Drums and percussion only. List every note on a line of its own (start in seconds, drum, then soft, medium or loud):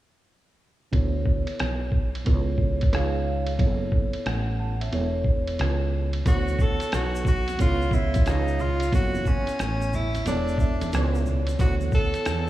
0.93 kick medium
0.93 ride medium
1.26 kick medium
1.47 ride soft
1.60 cross-stick loud
1.60 hi-hat pedal medium
1.60 ride medium
1.92 kick medium
2.15 ride medium
2.26 kick medium
2.26 ride medium
2.58 kick medium
2.81 kick medium
2.81 ride soft
2.93 cross-stick loud
2.93 hi-hat pedal soft
2.93 ride medium
3.47 ride medium
3.59 kick loud
3.59 ride medium
3.92 kick medium
4.13 ride soft
4.26 cross-stick loud
4.26 hi-hat pedal soft
4.26 ride medium
4.81 ride medium
4.93 ride medium
5.25 kick medium
5.47 ride medium
5.59 cross-stick loud
5.59 hi-hat pedal soft
5.59 ride medium
6.13 ride medium
6.26 kick loud
6.26 ride medium
6.26 shaker medium
6.48 high conga soft
6.48 shaker soft
6.59 kick medium
6.59 shaker soft
6.80 ride medium
6.80 shaker soft
6.92 cross-stick loud
6.92 hi-hat pedal medium
6.92 ride medium
6.92 shaker medium
7.15 shaker medium
7.25 kick medium
7.25 low conga medium
7.25 shaker soft
7.48 ride medium
7.48 high conga soft
7.48 shaker soft
7.59 kick medium
7.59 ride medium
7.59 low conga medium
7.59 shaker medium
7.82 shaker soft
7.91 kick medium
7.91 shaker soft
8.14 kick medium
8.14 ride medium
8.14 high conga medium
8.14 shaker soft
8.26 cross-stick loud
8.26 hi-hat pedal soft
8.26 ride medium
8.26 shaker medium
8.48 shaker soft
8.59 low conga medium
8.59 shaker soft
8.80 ride medium
8.80 shaker soft
8.92 kick loud
8.92 ride medium
8.92 shaker medium
9.15 high conga medium
9.15 shaker soft
9.25 kick medium
9.25 shaker soft
9.47 ride medium
9.47 shaker soft
9.59 cross-stick loud
9.59 hi-hat pedal medium
9.59 ride medium
9.59 shaker medium
9.82 shaker medium
9.93 low conga medium
9.93 shaker soft
10.15 ride medium
10.15 high conga soft
10.15 shaker soft
10.26 ride medium
10.26 low conga medium
10.26 shaker medium
10.48 shaker soft
10.58 kick medium
10.58 shaker soft
10.81 ride medium
10.81 high conga medium
10.81 shaker medium
10.93 cross-stick loud
10.93 hi-hat pedal soft
10.93 ride medium
10.93 shaker medium
11.15 shaker soft
11.26 low conga medium
11.26 shaker soft
11.47 ride medium
11.47 shaker soft
11.59 kick loud
11.59 ride medium
11.59 shaker medium
11.81 high conga soft
11.81 shaker soft
11.92 kick medium
11.92 shaker soft
12.14 ride medium
12.14 shaker soft
12.26 cross-stick loud
12.26 hi-hat pedal medium
12.26 ride medium
12.26 shaker medium